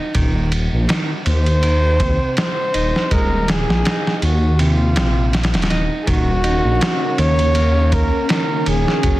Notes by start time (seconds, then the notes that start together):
Already playing: D#4
0.15 D#1 D#3, kick, ride
0.52 ride
0.73 A#1
0.89 D#3, snare, ride
1.26 D#2 C5, ride
1.46 ride
1.63 D#3, ride
2.00 C3, kick, ride
2.37 C5, snare, ride
2.74 D#1 D#4, ride
2.96 snare
3.11 D#1 G#3 A#4, kick, ride
3.48 G#4, snare, ride
3.68 A#1, snare
3.85 D#4, snare, ride
4.07 snare
4.17 G#4
4.22 D#2 F#4, ride
4.59 C3 F4, ride
4.96 A#1 C3, snare, ride
5.33 snare, ride
5.43 snare, ride
5.54 D#1, snare, ride
5.62 snare, ride
5.70 D#1 D#4, snare, ride
6.02 G#4
6.07 D#1 D#3 C#4 F#4 A#4, kick, ride
6.44 D#4, ride
6.65 A#1
6.81 snare, ride
7.18 D#2 D#3 C#5, ride
7.39 ride
7.55 A#3, ride
7.92 A#4, kick, ride
8.29 D#3 A#4, snare, ride
8.66 D#1 G#4, ride
8.88 snare
9.03 F#1 F#3, kick, ride